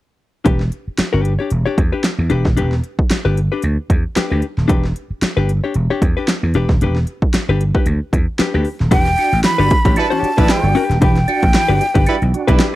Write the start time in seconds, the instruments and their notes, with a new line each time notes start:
0.45 slap bass E1, hollow-body jazz guitar D4 G4 B4, kick, closed hi-hat
0.60 snare
0.72 closed hi-hat
0.88 muted slap bass stroke
0.98 muted slap bass stroke, snare, closed hi-hat
1.13 slap bass G1, hollow-body jazz guitar D4 G4 B4
1.25 closed hi-hat
1.39 hollow-body jazz guitar D4 G4 C#5
1.50 slap bass E1, closed hi-hat
1.66 hollow-body jazz guitar D4 G4 C#5
1.78 slap bass E2, kick, closed hi-hat
1.92 hollow-body jazz guitar D4 G4 B4
2.04 snare, closed hi-hat
2.18 slap bass E2
2.30 slap bass E1, hollow-body jazz guitar D4 G4 B4, closed hi-hat
2.45 slap bass D#1, kick, snare
2.57 slap bass E1, hollow-body jazz guitar D4 G4 B4, closed hi-hat
2.72 snare
2.84 closed hi-hat
2.99 muted slap bass stroke, kick
3.10 muted slap bass stroke, snare, closed hi-hat
3.25 slap bass G1, hollow-body jazz guitar D4 G4 B4
3.37 closed hi-hat
3.52 hollow-body jazz guitar D4 G4 B4
3.62 slap bass D2, closed hi-hat
3.90 slap bass E2, kick, closed hi-hat
4.16 hollow-body jazz guitar D4 G4 B4, muted slap bass stroke, snare, closed hi-hat
4.30 slap bass D2, hollow-body jazz guitar D4 G4 B4
4.42 closed hi-hat
4.57 slap bass D#1, snare
4.68 slap bass E1, hollow-body jazz guitar D4 G4 B4, kick, closed hi-hat
4.85 snare
4.96 closed hi-hat
5.10 muted slap bass stroke
5.22 muted slap bass stroke, snare, closed hi-hat
5.37 slap bass G1, hollow-body jazz guitar D4 G4 B4
5.49 closed hi-hat
5.64 hollow-body jazz guitar D4 G4 C#5
5.74 slap bass E1, closed hi-hat
5.90 hollow-body jazz guitar D4 G4 C#5
6.02 slap bass E2, kick, closed hi-hat
6.17 hollow-body jazz guitar D4 G4 B4
6.28 snare, closed hi-hat
6.43 slap bass E2
6.54 slap bass E1, hollow-body jazz guitar D4 G4 B4, closed hi-hat
6.69 slap bass D#1, kick, snare
6.81 slap bass E1, hollow-body jazz guitar D4 G4 B4, closed hi-hat
6.96 snare
7.07 closed hi-hat
7.22 muted slap bass stroke, kick
7.34 muted slap bass stroke, snare, closed hi-hat
7.49 slap bass G1, hollow-body jazz guitar D4 G4 B4
7.61 closed hi-hat
7.75 hollow-body jazz guitar D4 G4 B4, kick
7.86 slap bass D2, closed hi-hat
8.13 slap bass E2, kick, closed hi-hat
8.39 hollow-body jazz guitar D4 G4 B4, muted slap bass stroke, snare, closed hi-hat
8.54 slap bass D2, hollow-body jazz guitar D4 G4 B4
8.65 open hi-hat
8.80 slap bass D#1, snare
8.91 slap bass E1, tonewheel organ E3, hollow-body jazz guitar D4 G4 B4, flute G5, kick, closed hi-hat
9.06 snare, closed hi-hat
9.18 tonewheel organ D4 F#4, closed hi-hat
9.33 slap bass A1, closed hi-hat
9.44 tonewheel organ E3, flute B5, snare, closed hi-hat
9.58 slap bass G1, tonewheel organ G3 D4 F#4, hollow-body jazz guitar D4 G4 B4
9.71 tonewheel organ F#4, kick, closed hi-hat
9.85 slap bass A1, hollow-body jazz guitar D4 G4 C#5, kick, closed hi-hat
9.96 horn section G3 E4 B4, tonewheel organ D4 F#4, flute A5, closed hi-hat
10.10 tonewheel organ E3, hollow-body jazz guitar D4 G4 C#5, closed hi-hat
10.23 tonewheel organ D4 F#4, muted slap bass stroke, closed hi-hat
10.37 slap bass A1, horn section G3 E4 B4, hollow-body jazz guitar D4 G4 B4, kick, closed hi-hat
10.49 tonewheel organ E3, flute G5, muted slap bass stroke, snare, closed hi-hat
10.63 slap bass G1, tonewheel organ G3 D4 F#4, closed hi-hat
10.75 hollow-body jazz guitar D4 G4 B4, tonewheel organ D4 F#4, open hi-hat
10.89 slap bass D#1, snare, closed hi-hat
11.01 slap bass E1, tonewheel organ E3, hollow-body jazz guitar D4 G4 B4, flute G5, kick, closed hi-hat
11.16 snare, closed hi-hat
11.28 tonewheel organ D4 F#4, closed hi-hat
11.42 slap bass A1, kick, closed hi-hat
11.54 tonewheel organ E3, snare, closed hi-hat
11.68 slap bass G1, tonewheel organ G3 D4 F#4, hollow-body jazz guitar D4 G4 B4
11.81 tonewheel organ D4 F#4, closed hi-hat
11.94 slap bass G1, hollow-body jazz guitar D4 G4 B4, kick, closed hi-hat
12.06 horn section G3 E4 B4, tonewheel organ D4 F#4, closed hi-hat
12.22 slap bass B1, tonewheel organ E3, closed hi-hat
12.33 tonewheel organ D4 F#4, closed hi-hat
12.47 slap bass B1, horn section G3 E4 B4, hollow-body jazz guitar D4 G4 B4, kick, closed hi-hat
12.59 hollow-body jazz guitar D4 G4 B4, snare, closed hi-hat